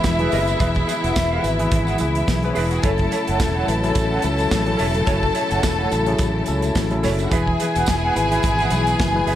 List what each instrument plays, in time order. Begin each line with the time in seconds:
Already playing: string section B2 E3 G#3 E4, tine electric piano E3 E4 G#4 B4, violin section E4 E5
0.04 fingered electric bass E1, muted clean electric guitar stroke, kick, snare, tambourine, high conga
0.19 tine electric piano E3 E4 G#4 B4, clean electric guitar G#4 B4 E5, closed hi-hat, high conga
0.32 fingered electric bass F#1, clean electric guitar G#4 B4 E5, open hi-hat, tambourine
0.48 muted clean electric guitar stroke, closed hi-hat, tambourine
0.59 fingered electric bass E1, tine electric piano E3 E4 G#4 B4, clean electric guitar G#4 B4 E5, kick, closed hi-hat, tambourine, muted conga
0.75 muted clean electric guitar stroke, kick, closed hi-hat
0.87 clean electric guitar G#4 B4 E5, closed hi-hat, tambourine, muted conga
1.02 fingered electric bass E1, clean electric guitar G#4 B4 F#5, closed hi-hat
1.14 fingered electric bass E1, muted clean electric guitar stroke, kick, snare, tambourine, high conga
1.30 clean electric guitar G#4 B4 F#5
1.42 fingered electric bass G#1, tine electric piano E3 E4 G#4 B4, muted clean electric guitar stroke, closed hi-hat, tambourine
1.58 tine electric piano E3 E4 G#4 B4, muted clean electric guitar stroke, closed hi-hat
1.71 fingered electric bass G#1, muted clean electric guitar stroke, kick, closed hi-hat, tambourine
1.86 clean electric guitar G#4 B4 F#5, closed hi-hat, tambourine
1.98 fingered electric bass C#2, tine electric piano E3 E4 G#4 B4, muted clean electric guitar stroke, closed hi-hat, tambourine, muted conga
2.15 muted clean electric guitar stroke, closed hi-hat
2.27 fingered electric bass B1, kick, snare, tambourine, high conga
2.42 tine electric piano E3 E4 G#4 B4, violin section B3 B4, muted clean electric guitar stroke, closed hi-hat, high conga
2.51 violin section C#4 C#5
2.55 fingered electric bass E1, violin section D4 D5, clean electric guitar G#4 B4 E5, open hi-hat, tambourine
2.64 violin section E4 E5
2.71 violin section F#4 F#5, muted clean electric guitar stroke, closed hi-hat, tambourine
2.79 string section C#3 F#3 A3, violin section G#4 G#5, clean electric guitar A4, muted conga
2.83 fingered electric bass F#1, tine electric piano F#3 C#4 E4 A4, violin section A4 A5, clean electric guitar C#5 E5, kick, closed hi-hat, tambourine
2.98 muted clean electric guitar stroke, kick, closed hi-hat
3.10 clean electric guitar A4 C#5 E5, closed hi-hat, tambourine, muted conga
3.27 fingered electric bass F#1, clean electric guitar A4 C#5 F#5, closed hi-hat
3.40 fingered electric bass E1, muted clean electric guitar stroke, kick, snare, tambourine, high conga
3.55 clean electric guitar A4 C#5 F#5
3.67 fingered electric bass A1, tine electric piano F#3 C#4 E4 B4, muted clean electric guitar stroke, closed hi-hat, tambourine
3.82 tine electric piano F#3 C#4 E4 A4, muted clean electric guitar stroke, closed hi-hat
3.95 fingered electric bass A1, muted clean electric guitar stroke, kick, closed hi-hat, tambourine
4.11 clean electric guitar A4 C#5 F#5
4.22 fingered electric bass C#2, tine electric piano F#3 C#4 E4 A4, muted clean electric guitar stroke, closed hi-hat, tambourine, muted conga
4.38 muted clean electric guitar stroke, closed hi-hat, tambourine
4.51 fingered electric bass A1, kick, snare, tambourine, high conga
4.66 tine electric piano F#3 C#4 E4 A4, muted clean electric guitar stroke, closed hi-hat, high conga
4.77 fingered electric bass E1, clean electric guitar A4 C#5 E5, open hi-hat, tambourine
4.93 muted clean electric guitar stroke, closed hi-hat
5.06 fingered electric bass F#1, tine electric piano F#3 C#4 E4 A4, clean electric guitar A4 C#5 E5, kick, closed hi-hat, tambourine, muted conga
5.22 muted clean electric guitar stroke, kick
5.34 clean electric guitar A4 C#5 E5, closed hi-hat, tambourine
5.50 fingered electric bass F#1, clean electric guitar A4 C#5 F#5, closed hi-hat, tambourine
5.63 fingered electric bass E1, muted clean electric guitar stroke, kick, snare, tambourine, high conga
5.79 clean electric guitar A4 C#5 F#5
5.91 fingered electric bass A1, tine electric piano F#3 C#4 E4 A4, muted clean electric guitar stroke, closed hi-hat, tambourine
6.06 tine electric piano F#3 C#4 E4 G#4, closed hi-hat
6.18 fingered electric bass A1, muted clean electric guitar stroke, kick, closed hi-hat, tambourine
6.34 muted clean electric guitar stroke
6.46 fingered electric bass C#2, tine electric piano F#3 C#4 E4 A4, closed hi-hat, tambourine, muted conga
6.62 muted clean electric guitar stroke, closed hi-hat, tambourine
6.75 fingered electric bass A1, kick, snare, tambourine, high conga
6.90 tine electric piano F#3 C#4 E4 A4, muted clean electric guitar stroke, closed hi-hat, high conga
7.03 fingered electric bass F#1, violin section C#4 C#5, clean electric guitar A4 C#5 E5, snare, open hi-hat, tambourine
7.12 violin section D4 D5
7.19 violin section E4 E5, muted clean electric guitar stroke, closed hi-hat, tambourine
7.26 violin section F#4 F#5
7.30 fingered electric bass E1, string section B2 E3 G#3 E4, tine electric piano E3 E4 G#4 B4, clean electric guitar G#4 B4 E5, violin section G#4 G#5, kick, closed hi-hat, tambourine, muted conga
7.47 muted clean electric guitar stroke, kick
7.60 clean electric guitar G#4 B4 E5, closed hi-hat, tambourine, muted conga
7.75 fingered electric bass E1, clean electric guitar G#4 B4 F#5, closed hi-hat, tambourine
7.86 fingered electric bass E1, muted clean electric guitar stroke, kick, snare, tambourine, high conga
8.05 clean electric guitar G#4 B4 F#5
8.15 fingered electric bass G#1, tine electric piano E3 E4 G#4 B4, muted clean electric guitar stroke, closed hi-hat, tambourine
8.31 tine electric piano E3 E4 G#4 B4, closed hi-hat
8.43 fingered electric bass G#1, muted clean electric guitar stroke, kick, closed hi-hat, tambourine
8.59 clean electric guitar G#4 B4 F#5, closed hi-hat, tambourine
8.70 fingered electric bass B1, tine electric piano E3 E4 G#4 B4, muted clean electric guitar stroke, closed hi-hat, tambourine, muted conga
8.87 muted clean electric guitar stroke, closed hi-hat, tambourine
8.99 fingered electric bass F#1, kick, snare, tambourine, high conga
9.14 tine electric piano E3 E4 G#4 B4, muted clean electric guitar stroke, high conga
9.27 fingered electric bass F#1, clean electric guitar G#4 B4 E5, open hi-hat, tambourine